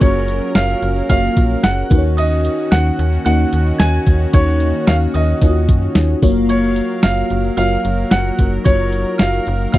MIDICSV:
0, 0, Header, 1, 7, 480
1, 0, Start_track
1, 0, Tempo, 540541
1, 11, Time_signature, 4, 2, 24, 8
1, 8687, End_track
2, 0, Start_track
2, 0, Title_t, "Synth bell"
2, 0, Program_c, 0, 98
2, 5, Note_on_c, 0, 85, 72
2, 454, Note_off_c, 0, 85, 0
2, 489, Note_on_c, 0, 89, 78
2, 936, Note_off_c, 0, 89, 0
2, 972, Note_on_c, 0, 89, 84
2, 1418, Note_off_c, 0, 89, 0
2, 1450, Note_on_c, 0, 90, 87
2, 1785, Note_off_c, 0, 90, 0
2, 1928, Note_on_c, 0, 87, 81
2, 2376, Note_off_c, 0, 87, 0
2, 2407, Note_on_c, 0, 90, 82
2, 2855, Note_off_c, 0, 90, 0
2, 2886, Note_on_c, 0, 90, 95
2, 3335, Note_off_c, 0, 90, 0
2, 3361, Note_on_c, 0, 92, 90
2, 3700, Note_off_c, 0, 92, 0
2, 3846, Note_on_c, 0, 85, 79
2, 4294, Note_off_c, 0, 85, 0
2, 4324, Note_on_c, 0, 89, 80
2, 4434, Note_off_c, 0, 89, 0
2, 4564, Note_on_c, 0, 87, 79
2, 5492, Note_off_c, 0, 87, 0
2, 5763, Note_on_c, 0, 85, 69
2, 6213, Note_off_c, 0, 85, 0
2, 6241, Note_on_c, 0, 89, 80
2, 6692, Note_off_c, 0, 89, 0
2, 6722, Note_on_c, 0, 89, 85
2, 7172, Note_off_c, 0, 89, 0
2, 7198, Note_on_c, 0, 90, 81
2, 7539, Note_off_c, 0, 90, 0
2, 7676, Note_on_c, 0, 85, 77
2, 8129, Note_off_c, 0, 85, 0
2, 8152, Note_on_c, 0, 89, 83
2, 8607, Note_off_c, 0, 89, 0
2, 8635, Note_on_c, 0, 89, 88
2, 8687, Note_off_c, 0, 89, 0
2, 8687, End_track
3, 0, Start_track
3, 0, Title_t, "Grand piano"
3, 0, Program_c, 1, 0
3, 13, Note_on_c, 1, 73, 88
3, 493, Note_on_c, 1, 77, 92
3, 507, Note_off_c, 1, 73, 0
3, 961, Note_off_c, 1, 77, 0
3, 975, Note_on_c, 1, 77, 98
3, 1453, Note_on_c, 1, 78, 96
3, 1467, Note_off_c, 1, 77, 0
3, 1787, Note_off_c, 1, 78, 0
3, 1936, Note_on_c, 1, 75, 100
3, 2380, Note_off_c, 1, 75, 0
3, 2415, Note_on_c, 1, 78, 102
3, 2881, Note_off_c, 1, 78, 0
3, 2894, Note_on_c, 1, 78, 104
3, 3339, Note_off_c, 1, 78, 0
3, 3371, Note_on_c, 1, 80, 105
3, 3706, Note_off_c, 1, 80, 0
3, 3854, Note_on_c, 1, 73, 100
3, 4330, Note_on_c, 1, 77, 92
3, 4347, Note_off_c, 1, 73, 0
3, 4384, Note_off_c, 1, 77, 0
3, 4575, Note_on_c, 1, 75, 86
3, 5498, Note_off_c, 1, 75, 0
3, 5770, Note_on_c, 1, 73, 86
3, 6217, Note_off_c, 1, 73, 0
3, 6244, Note_on_c, 1, 77, 90
3, 6715, Note_off_c, 1, 77, 0
3, 6728, Note_on_c, 1, 77, 97
3, 7207, Note_on_c, 1, 78, 97
3, 7224, Note_off_c, 1, 77, 0
3, 7544, Note_off_c, 1, 78, 0
3, 7683, Note_on_c, 1, 73, 95
3, 8167, Note_on_c, 1, 77, 92
3, 8181, Note_off_c, 1, 73, 0
3, 8615, Note_off_c, 1, 77, 0
3, 8646, Note_on_c, 1, 77, 97
3, 8687, Note_off_c, 1, 77, 0
3, 8687, End_track
4, 0, Start_track
4, 0, Title_t, "FM electric piano"
4, 0, Program_c, 2, 5
4, 0, Control_c, 2, 64, 127
4, 0, Note_on_c, 2, 58, 74
4, 0, Note_on_c, 2, 65, 70
4, 0, Note_on_c, 2, 66, 73
4, 0, Note_on_c, 2, 68, 81
4, 8, Note_off_c, 2, 58, 0
4, 8, Note_on_c, 2, 58, 73
4, 12, Note_off_c, 2, 65, 0
4, 12, Note_on_c, 2, 65, 72
4, 15, Note_off_c, 2, 66, 0
4, 15, Note_on_c, 2, 66, 71
4, 19, Note_on_c, 2, 73, 84
4, 653, Note_off_c, 2, 58, 0
4, 655, Note_off_c, 2, 65, 0
4, 657, Note_off_c, 2, 66, 0
4, 659, Note_off_c, 2, 73, 0
4, 970, Note_on_c, 2, 58, 77
4, 974, Note_on_c, 2, 65, 70
4, 977, Note_on_c, 2, 66, 73
4, 981, Note_on_c, 2, 73, 84
4, 1614, Note_off_c, 2, 58, 0
4, 1616, Note_off_c, 2, 65, 0
4, 1618, Note_off_c, 2, 66, 0
4, 1620, Note_off_c, 2, 73, 0
4, 1688, Note_on_c, 2, 58, 87
4, 1693, Note_on_c, 2, 63, 80
4, 1696, Note_on_c, 2, 66, 76
4, 1699, Note_on_c, 2, 71, 77
4, 1702, Control_c, 2, 64, 0
4, 1706, Note_off_c, 2, 68, 0
4, 1753, Note_off_c, 2, 71, 0
4, 1756, Note_on_c, 2, 73, 92
4, 1882, Control_c, 2, 64, 127
4, 2457, Note_off_c, 2, 58, 0
4, 2460, Note_off_c, 2, 63, 0
4, 2462, Note_off_c, 2, 66, 0
4, 2492, Note_off_c, 2, 73, 0
4, 2890, Note_on_c, 2, 58, 78
4, 2894, Note_on_c, 2, 63, 69
4, 2896, Note_on_c, 2, 66, 72
4, 2901, Note_on_c, 2, 75, 86
4, 3534, Note_off_c, 2, 58, 0
4, 3536, Note_off_c, 2, 63, 0
4, 3538, Note_off_c, 2, 66, 0
4, 3540, Note_off_c, 2, 75, 0
4, 3847, Note_on_c, 2, 58, 74
4, 3851, Note_on_c, 2, 63, 70
4, 3854, Note_on_c, 2, 66, 69
4, 3858, Note_on_c, 2, 73, 84
4, 4493, Note_off_c, 2, 58, 0
4, 4495, Note_off_c, 2, 63, 0
4, 4497, Note_off_c, 2, 66, 0
4, 4499, Note_off_c, 2, 73, 0
4, 4805, Note_on_c, 2, 58, 75
4, 4808, Note_on_c, 2, 63, 65
4, 4813, Note_on_c, 2, 65, 58
4, 4816, Note_on_c, 2, 73, 80
4, 4870, Note_off_c, 2, 65, 0
4, 4870, Note_on_c, 2, 66, 70
4, 5452, Note_off_c, 2, 58, 0
4, 5453, Note_off_c, 2, 63, 0
4, 5458, Note_off_c, 2, 73, 0
4, 5484, Note_off_c, 2, 66, 0
4, 5526, Note_on_c, 2, 58, 102
4, 5529, Note_on_c, 2, 65, 87
4, 5533, Note_on_c, 2, 66, 88
4, 5536, Note_on_c, 2, 73, 108
4, 5541, Control_c, 2, 64, 0
4, 5684, Control_c, 2, 64, 127
4, 6297, Note_off_c, 2, 58, 0
4, 6298, Note_off_c, 2, 65, 0
4, 6300, Note_off_c, 2, 66, 0
4, 6302, Note_off_c, 2, 73, 0
4, 6722, Note_on_c, 2, 58, 77
4, 6726, Note_on_c, 2, 65, 73
4, 6730, Note_on_c, 2, 66, 68
4, 6733, Note_on_c, 2, 73, 86
4, 7370, Note_off_c, 2, 58, 0
4, 7372, Note_off_c, 2, 65, 0
4, 7374, Note_off_c, 2, 66, 0
4, 7376, Note_off_c, 2, 73, 0
4, 7681, Note_on_c, 2, 58, 74
4, 7684, Note_on_c, 2, 65, 69
4, 7688, Note_on_c, 2, 66, 68
4, 7691, Note_on_c, 2, 73, 81
4, 8330, Note_off_c, 2, 58, 0
4, 8331, Note_off_c, 2, 65, 0
4, 8333, Note_off_c, 2, 66, 0
4, 8335, Note_off_c, 2, 73, 0
4, 8642, Note_on_c, 2, 58, 74
4, 8648, Note_on_c, 2, 65, 72
4, 8651, Note_on_c, 2, 66, 70
4, 8655, Note_on_c, 2, 73, 86
4, 8687, Note_off_c, 2, 58, 0
4, 8687, Note_off_c, 2, 65, 0
4, 8687, Note_off_c, 2, 66, 0
4, 8687, Note_off_c, 2, 73, 0
4, 8687, End_track
5, 0, Start_track
5, 0, Title_t, "Analog synth pad"
5, 0, Program_c, 3, 89
5, 0, Note_on_c, 3, 54, 86
5, 0, Note_on_c, 3, 61, 78
5, 0, Note_on_c, 3, 70, 93
5, 1657, Note_off_c, 3, 61, 0
5, 1658, Note_off_c, 3, 70, 0
5, 1659, Note_off_c, 3, 54, 0
5, 1693, Note_on_c, 3, 61, 74
5, 1694, Note_on_c, 3, 51, 87
5, 1695, Note_on_c, 3, 66, 93
5, 5496, Note_off_c, 3, 61, 0
5, 5497, Note_off_c, 3, 51, 0
5, 5497, Note_off_c, 3, 66, 0
5, 5524, Note_on_c, 3, 54, 88
5, 5526, Note_on_c, 3, 77, 72
5, 5527, Note_on_c, 3, 70, 94
5, 7429, Note_off_c, 3, 77, 0
5, 7450, Note_on_c, 3, 63, 77
5, 8687, Note_off_c, 3, 54, 0
5, 8687, Note_off_c, 3, 63, 0
5, 8687, Note_off_c, 3, 70, 0
5, 8687, End_track
6, 0, Start_track
6, 0, Title_t, "FM bass"
6, 0, Program_c, 4, 39
6, 14, Note_on_c, 4, 30, 111
6, 358, Note_off_c, 4, 30, 0
6, 492, Note_on_c, 4, 30, 110
6, 664, Note_off_c, 4, 30, 0
6, 732, Note_on_c, 4, 30, 101
6, 905, Note_off_c, 4, 30, 0
6, 975, Note_on_c, 4, 30, 107
6, 1146, Note_off_c, 4, 30, 0
6, 1216, Note_on_c, 4, 34, 93
6, 1387, Note_off_c, 4, 34, 0
6, 1456, Note_on_c, 4, 30, 105
6, 1627, Note_off_c, 4, 30, 0
6, 1695, Note_on_c, 4, 39, 100
6, 2212, Note_off_c, 4, 39, 0
6, 2414, Note_on_c, 4, 39, 103
6, 2586, Note_off_c, 4, 39, 0
6, 2655, Note_on_c, 4, 39, 100
6, 2826, Note_off_c, 4, 39, 0
6, 2895, Note_on_c, 4, 39, 112
6, 3067, Note_off_c, 4, 39, 0
6, 3134, Note_on_c, 4, 39, 91
6, 3306, Note_off_c, 4, 39, 0
6, 3373, Note_on_c, 4, 39, 104
6, 3545, Note_off_c, 4, 39, 0
6, 3613, Note_on_c, 4, 39, 96
6, 3785, Note_off_c, 4, 39, 0
6, 3853, Note_on_c, 4, 39, 107
6, 4198, Note_off_c, 4, 39, 0
6, 4330, Note_on_c, 4, 39, 109
6, 4503, Note_off_c, 4, 39, 0
6, 4570, Note_on_c, 4, 39, 96
6, 4743, Note_off_c, 4, 39, 0
6, 4812, Note_on_c, 4, 39, 98
6, 5050, Note_on_c, 4, 42, 93
6, 5064, Note_off_c, 4, 39, 0
6, 5223, Note_off_c, 4, 42, 0
6, 5288, Note_on_c, 4, 39, 98
6, 5462, Note_off_c, 4, 39, 0
6, 5529, Note_on_c, 4, 30, 100
6, 6048, Note_off_c, 4, 30, 0
6, 6250, Note_on_c, 4, 30, 101
6, 6423, Note_off_c, 4, 30, 0
6, 6490, Note_on_c, 4, 30, 92
6, 6663, Note_off_c, 4, 30, 0
6, 6726, Note_on_c, 4, 30, 102
6, 6901, Note_off_c, 4, 30, 0
6, 6971, Note_on_c, 4, 30, 91
6, 7143, Note_off_c, 4, 30, 0
6, 7206, Note_on_c, 4, 30, 105
6, 7381, Note_off_c, 4, 30, 0
6, 7450, Note_on_c, 4, 30, 104
6, 7623, Note_off_c, 4, 30, 0
6, 7689, Note_on_c, 4, 30, 112
6, 8035, Note_off_c, 4, 30, 0
6, 8171, Note_on_c, 4, 30, 101
6, 8344, Note_off_c, 4, 30, 0
6, 8413, Note_on_c, 4, 30, 108
6, 8585, Note_off_c, 4, 30, 0
6, 8648, Note_on_c, 4, 30, 102
6, 8687, Note_off_c, 4, 30, 0
6, 8687, End_track
7, 0, Start_track
7, 0, Title_t, "Drums"
7, 12, Note_on_c, 9, 42, 89
7, 13, Note_on_c, 9, 36, 115
7, 16, Note_on_c, 9, 82, 75
7, 101, Note_off_c, 9, 42, 0
7, 102, Note_off_c, 9, 36, 0
7, 105, Note_off_c, 9, 82, 0
7, 135, Note_on_c, 9, 82, 48
7, 223, Note_off_c, 9, 82, 0
7, 250, Note_on_c, 9, 42, 74
7, 339, Note_off_c, 9, 42, 0
7, 373, Note_on_c, 9, 82, 48
7, 461, Note_off_c, 9, 82, 0
7, 488, Note_on_c, 9, 42, 79
7, 489, Note_on_c, 9, 38, 112
7, 491, Note_on_c, 9, 54, 65
7, 496, Note_on_c, 9, 82, 70
7, 577, Note_off_c, 9, 42, 0
7, 578, Note_off_c, 9, 38, 0
7, 579, Note_off_c, 9, 54, 0
7, 585, Note_off_c, 9, 82, 0
7, 615, Note_on_c, 9, 82, 39
7, 704, Note_off_c, 9, 82, 0
7, 731, Note_on_c, 9, 42, 70
7, 735, Note_on_c, 9, 82, 51
7, 820, Note_off_c, 9, 42, 0
7, 824, Note_off_c, 9, 82, 0
7, 852, Note_on_c, 9, 82, 58
7, 941, Note_off_c, 9, 82, 0
7, 973, Note_on_c, 9, 42, 93
7, 974, Note_on_c, 9, 36, 82
7, 975, Note_on_c, 9, 82, 66
7, 1062, Note_off_c, 9, 36, 0
7, 1062, Note_off_c, 9, 42, 0
7, 1064, Note_off_c, 9, 82, 0
7, 1093, Note_on_c, 9, 82, 44
7, 1182, Note_off_c, 9, 82, 0
7, 1212, Note_on_c, 9, 82, 44
7, 1214, Note_on_c, 9, 36, 94
7, 1214, Note_on_c, 9, 42, 75
7, 1301, Note_off_c, 9, 82, 0
7, 1303, Note_off_c, 9, 36, 0
7, 1303, Note_off_c, 9, 42, 0
7, 1331, Note_on_c, 9, 82, 48
7, 1420, Note_off_c, 9, 82, 0
7, 1453, Note_on_c, 9, 38, 116
7, 1453, Note_on_c, 9, 42, 76
7, 1454, Note_on_c, 9, 54, 65
7, 1454, Note_on_c, 9, 82, 60
7, 1541, Note_off_c, 9, 38, 0
7, 1542, Note_off_c, 9, 42, 0
7, 1543, Note_off_c, 9, 54, 0
7, 1543, Note_off_c, 9, 82, 0
7, 1576, Note_on_c, 9, 82, 50
7, 1665, Note_off_c, 9, 82, 0
7, 1695, Note_on_c, 9, 36, 103
7, 1698, Note_on_c, 9, 42, 79
7, 1784, Note_off_c, 9, 36, 0
7, 1787, Note_off_c, 9, 42, 0
7, 1816, Note_on_c, 9, 82, 50
7, 1904, Note_off_c, 9, 82, 0
7, 1934, Note_on_c, 9, 82, 76
7, 1936, Note_on_c, 9, 42, 90
7, 2022, Note_off_c, 9, 82, 0
7, 2025, Note_off_c, 9, 42, 0
7, 2055, Note_on_c, 9, 82, 50
7, 2144, Note_off_c, 9, 82, 0
7, 2173, Note_on_c, 9, 42, 73
7, 2262, Note_off_c, 9, 42, 0
7, 2293, Note_on_c, 9, 82, 51
7, 2382, Note_off_c, 9, 82, 0
7, 2412, Note_on_c, 9, 42, 82
7, 2412, Note_on_c, 9, 82, 70
7, 2413, Note_on_c, 9, 38, 108
7, 2415, Note_on_c, 9, 54, 65
7, 2501, Note_off_c, 9, 42, 0
7, 2501, Note_off_c, 9, 82, 0
7, 2502, Note_off_c, 9, 38, 0
7, 2504, Note_off_c, 9, 54, 0
7, 2534, Note_on_c, 9, 82, 40
7, 2623, Note_off_c, 9, 82, 0
7, 2652, Note_on_c, 9, 82, 53
7, 2656, Note_on_c, 9, 42, 70
7, 2740, Note_off_c, 9, 82, 0
7, 2744, Note_off_c, 9, 42, 0
7, 2770, Note_on_c, 9, 82, 57
7, 2859, Note_off_c, 9, 82, 0
7, 2892, Note_on_c, 9, 42, 89
7, 2893, Note_on_c, 9, 82, 67
7, 2981, Note_off_c, 9, 42, 0
7, 2982, Note_off_c, 9, 82, 0
7, 3015, Note_on_c, 9, 82, 43
7, 3103, Note_off_c, 9, 82, 0
7, 3131, Note_on_c, 9, 42, 70
7, 3132, Note_on_c, 9, 82, 43
7, 3219, Note_off_c, 9, 42, 0
7, 3221, Note_off_c, 9, 82, 0
7, 3251, Note_on_c, 9, 82, 49
7, 3340, Note_off_c, 9, 82, 0
7, 3370, Note_on_c, 9, 38, 116
7, 3370, Note_on_c, 9, 82, 60
7, 3371, Note_on_c, 9, 42, 77
7, 3372, Note_on_c, 9, 54, 64
7, 3459, Note_off_c, 9, 38, 0
7, 3459, Note_off_c, 9, 82, 0
7, 3460, Note_off_c, 9, 42, 0
7, 3461, Note_off_c, 9, 54, 0
7, 3493, Note_on_c, 9, 82, 51
7, 3581, Note_off_c, 9, 82, 0
7, 3610, Note_on_c, 9, 42, 80
7, 3612, Note_on_c, 9, 36, 91
7, 3698, Note_off_c, 9, 42, 0
7, 3700, Note_off_c, 9, 36, 0
7, 3731, Note_on_c, 9, 82, 48
7, 3820, Note_off_c, 9, 82, 0
7, 3849, Note_on_c, 9, 42, 89
7, 3851, Note_on_c, 9, 36, 117
7, 3851, Note_on_c, 9, 82, 75
7, 3937, Note_off_c, 9, 42, 0
7, 3939, Note_off_c, 9, 82, 0
7, 3940, Note_off_c, 9, 36, 0
7, 3972, Note_on_c, 9, 82, 47
7, 4061, Note_off_c, 9, 82, 0
7, 4086, Note_on_c, 9, 42, 68
7, 4175, Note_off_c, 9, 42, 0
7, 4209, Note_on_c, 9, 82, 53
7, 4298, Note_off_c, 9, 82, 0
7, 4327, Note_on_c, 9, 42, 82
7, 4328, Note_on_c, 9, 38, 113
7, 4330, Note_on_c, 9, 54, 62
7, 4332, Note_on_c, 9, 82, 70
7, 4416, Note_off_c, 9, 42, 0
7, 4417, Note_off_c, 9, 38, 0
7, 4418, Note_off_c, 9, 54, 0
7, 4421, Note_off_c, 9, 82, 0
7, 4452, Note_on_c, 9, 82, 39
7, 4540, Note_off_c, 9, 82, 0
7, 4568, Note_on_c, 9, 42, 70
7, 4571, Note_on_c, 9, 82, 52
7, 4657, Note_off_c, 9, 42, 0
7, 4660, Note_off_c, 9, 82, 0
7, 4688, Note_on_c, 9, 82, 59
7, 4777, Note_off_c, 9, 82, 0
7, 4809, Note_on_c, 9, 42, 92
7, 4810, Note_on_c, 9, 82, 66
7, 4811, Note_on_c, 9, 36, 85
7, 4898, Note_off_c, 9, 42, 0
7, 4899, Note_off_c, 9, 82, 0
7, 4900, Note_off_c, 9, 36, 0
7, 4928, Note_on_c, 9, 82, 46
7, 5016, Note_off_c, 9, 82, 0
7, 5045, Note_on_c, 9, 82, 44
7, 5049, Note_on_c, 9, 42, 70
7, 5050, Note_on_c, 9, 36, 99
7, 5134, Note_off_c, 9, 82, 0
7, 5138, Note_off_c, 9, 42, 0
7, 5139, Note_off_c, 9, 36, 0
7, 5166, Note_on_c, 9, 82, 47
7, 5255, Note_off_c, 9, 82, 0
7, 5285, Note_on_c, 9, 38, 121
7, 5285, Note_on_c, 9, 82, 60
7, 5286, Note_on_c, 9, 42, 75
7, 5287, Note_on_c, 9, 54, 63
7, 5374, Note_off_c, 9, 38, 0
7, 5374, Note_off_c, 9, 82, 0
7, 5375, Note_off_c, 9, 42, 0
7, 5376, Note_off_c, 9, 54, 0
7, 5409, Note_on_c, 9, 82, 46
7, 5498, Note_off_c, 9, 82, 0
7, 5528, Note_on_c, 9, 46, 79
7, 5529, Note_on_c, 9, 36, 110
7, 5617, Note_off_c, 9, 36, 0
7, 5617, Note_off_c, 9, 46, 0
7, 5648, Note_on_c, 9, 82, 49
7, 5736, Note_off_c, 9, 82, 0
7, 5765, Note_on_c, 9, 42, 92
7, 5766, Note_on_c, 9, 82, 73
7, 5854, Note_off_c, 9, 42, 0
7, 5855, Note_off_c, 9, 82, 0
7, 5885, Note_on_c, 9, 82, 49
7, 5974, Note_off_c, 9, 82, 0
7, 6003, Note_on_c, 9, 42, 70
7, 6092, Note_off_c, 9, 42, 0
7, 6125, Note_on_c, 9, 82, 53
7, 6214, Note_off_c, 9, 82, 0
7, 6241, Note_on_c, 9, 42, 86
7, 6242, Note_on_c, 9, 38, 113
7, 6243, Note_on_c, 9, 54, 63
7, 6245, Note_on_c, 9, 82, 70
7, 6329, Note_off_c, 9, 42, 0
7, 6331, Note_off_c, 9, 38, 0
7, 6332, Note_off_c, 9, 54, 0
7, 6334, Note_off_c, 9, 82, 0
7, 6365, Note_on_c, 9, 82, 40
7, 6453, Note_off_c, 9, 82, 0
7, 6485, Note_on_c, 9, 42, 65
7, 6486, Note_on_c, 9, 82, 52
7, 6574, Note_off_c, 9, 42, 0
7, 6574, Note_off_c, 9, 82, 0
7, 6603, Note_on_c, 9, 82, 53
7, 6692, Note_off_c, 9, 82, 0
7, 6723, Note_on_c, 9, 82, 64
7, 6724, Note_on_c, 9, 42, 92
7, 6812, Note_off_c, 9, 82, 0
7, 6813, Note_off_c, 9, 42, 0
7, 6843, Note_on_c, 9, 82, 43
7, 6932, Note_off_c, 9, 82, 0
7, 6965, Note_on_c, 9, 82, 43
7, 6968, Note_on_c, 9, 42, 71
7, 7054, Note_off_c, 9, 82, 0
7, 7056, Note_off_c, 9, 42, 0
7, 7086, Note_on_c, 9, 82, 49
7, 7175, Note_off_c, 9, 82, 0
7, 7204, Note_on_c, 9, 38, 122
7, 7205, Note_on_c, 9, 42, 77
7, 7205, Note_on_c, 9, 54, 64
7, 7209, Note_on_c, 9, 82, 59
7, 7293, Note_off_c, 9, 38, 0
7, 7293, Note_off_c, 9, 42, 0
7, 7294, Note_off_c, 9, 54, 0
7, 7297, Note_off_c, 9, 82, 0
7, 7328, Note_on_c, 9, 82, 51
7, 7416, Note_off_c, 9, 82, 0
7, 7446, Note_on_c, 9, 42, 80
7, 7448, Note_on_c, 9, 36, 89
7, 7535, Note_off_c, 9, 42, 0
7, 7537, Note_off_c, 9, 36, 0
7, 7567, Note_on_c, 9, 82, 48
7, 7656, Note_off_c, 9, 82, 0
7, 7685, Note_on_c, 9, 42, 91
7, 7687, Note_on_c, 9, 82, 73
7, 7688, Note_on_c, 9, 36, 114
7, 7774, Note_off_c, 9, 42, 0
7, 7775, Note_off_c, 9, 82, 0
7, 7777, Note_off_c, 9, 36, 0
7, 7808, Note_on_c, 9, 82, 48
7, 7896, Note_off_c, 9, 82, 0
7, 7925, Note_on_c, 9, 42, 76
7, 8014, Note_off_c, 9, 42, 0
7, 8045, Note_on_c, 9, 82, 49
7, 8133, Note_off_c, 9, 82, 0
7, 8162, Note_on_c, 9, 42, 87
7, 8163, Note_on_c, 9, 38, 112
7, 8164, Note_on_c, 9, 54, 63
7, 8166, Note_on_c, 9, 82, 74
7, 8251, Note_off_c, 9, 42, 0
7, 8252, Note_off_c, 9, 38, 0
7, 8253, Note_off_c, 9, 54, 0
7, 8255, Note_off_c, 9, 82, 0
7, 8287, Note_on_c, 9, 82, 41
7, 8375, Note_off_c, 9, 82, 0
7, 8406, Note_on_c, 9, 42, 69
7, 8406, Note_on_c, 9, 82, 52
7, 8494, Note_off_c, 9, 82, 0
7, 8495, Note_off_c, 9, 42, 0
7, 8524, Note_on_c, 9, 82, 60
7, 8613, Note_off_c, 9, 82, 0
7, 8645, Note_on_c, 9, 82, 64
7, 8646, Note_on_c, 9, 42, 97
7, 8649, Note_on_c, 9, 36, 89
7, 8687, Note_off_c, 9, 36, 0
7, 8687, Note_off_c, 9, 42, 0
7, 8687, Note_off_c, 9, 82, 0
7, 8687, End_track
0, 0, End_of_file